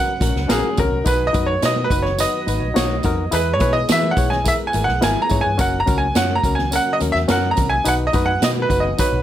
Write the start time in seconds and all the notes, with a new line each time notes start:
Already playing: C#3 F#3 C#4 F#4 A#4 F#5
0.07 muted conga
0.20 A#1 C#4 F#4 A#4, kick, closed hi-hat, tambourine, high conga
0.36 C#2, snare
0.48 A#1 C#4 F#4 G#4 A#4, snare, closed hi-hat, tambourine
0.64 high conga
0.77 C#2 C#4 F#4 A#4 C#5, kick, closed hi-hat, tambourine, low conga
0.92 C2
1.05 B1 D#3 B3 D#4 F#4 B4, kick, closed hi-hat, tambourine
1.20 muted conga
1.27 D#5
1.33 F#2 D#4 F#4 B4, kick, closed hi-hat, tambourine, high conga
1.46 C#5
1.62 B2 D#4 F#4 B4 D#5, snare, closed hi-hat, tambourine, muted conga
1.76 muted conga, high conga
1.84 B4
1.90 F#1 D#4 F#4 B4, kick, closed hi-hat, tambourine
2.02 C#5, snare, low conga
2.18 D#4 F#4 B4 D#5, closed hi-hat, tambourine
2.46 G#1 D#4 F#4 B4, closed hi-hat, tambourine, high conga
2.61 A#1
2.74 B1 D#4 F#4 C#5, snare, closed hi-hat, tambourine
2.90 high conga
3.03 F2 D#4 F#4 A#4, kick, closed hi-hat, tambourine, low conga
3.31 E2 E3 G#3 B3 E4 G#4 B4, closed hi-hat, tambourine
3.54 C#5
3.59 B2 E4 G#4 B4, kick, closed hi-hat, tambourine, high conga
3.73 D#5
3.88 E3 E4 G#4 B4 E5, snare, closed hi-hat, tambourine
4.03 muted conga, high conga
4.11 F#5
4.16 B1 E4 G#4 C#5, kick, closed hi-hat, tambourine
4.30 G#5, snare, low conga
4.44 E4 G#4 A#4 E5, kick, closed hi-hat, tambourine, muted conga
4.67 G#5
4.73 G#1 E4 G#4 A#4, closed hi-hat, tambourine, high conga
4.84 B1 F#5, snare
5.01 G#1 E4 G#4 A#4 G#5, snare, closed hi-hat, tambourine
5.17 muted conga, high conga
5.22 A#5
5.29 G#2 E4 G#4 C#5, kick, closed hi-hat, tambourine, low conga
5.41 G#5
5.46 G2
5.58 F#1 C#3 F#3 A#3 C#4 F#4 A#4 F#5, kick, closed hi-hat, tambourine
5.74 muted conga
5.80 A#5
5.86 C#2 C#4 F#4 A#4, kick, closed hi-hat, tambourine, high conga
5.98 G#5
6.15 F#2 C#4 F#4 C#5 F#5, snare, closed hi-hat, tambourine
6.30 high conga
6.35 A#5
6.44 C#2 C#4 F#4 A#4, kick, closed hi-hat, tambourine
6.55 G#5, snare, low conga
6.71 C#4 F#4 A#4, closed hi-hat, tambourine, muted conga
6.76 F#5
6.93 D#5
7.00 D#2 C#4 F#4 A#4, closed hi-hat, tambourine, high conga
7.12 E2 E5, snare
7.28 F#2 C#4 F#4 A#4 F#5, snare, closed hi-hat, tambourine
7.45 muted conga, high conga
7.51 A#5
7.56 C2 C#4 F#4 A#4, kick, closed hi-hat, tambourine, low conga
7.70 G#5
7.85 B1 D#3 B3 D#4 F#4 B4 F#5, closed hi-hat, tambourine, muted conga
8.07 D#5
8.13 F#2 D#4 F#4 B4, kick, closed hi-hat, tambourine, high conga
8.26 F#5
8.41 B2 D#4 F#4 B4 D#5, snare, closed hi-hat, tambourine
8.56 high conga
8.62 B4
8.69 F#1 D#4 F#4 B4, kick, closed hi-hat, tambourine
8.80 D#5
8.84 low conga
8.98 D#4 F#4 B4 C#5, kick, closed hi-hat, tambourine
9.12 B1, muted conga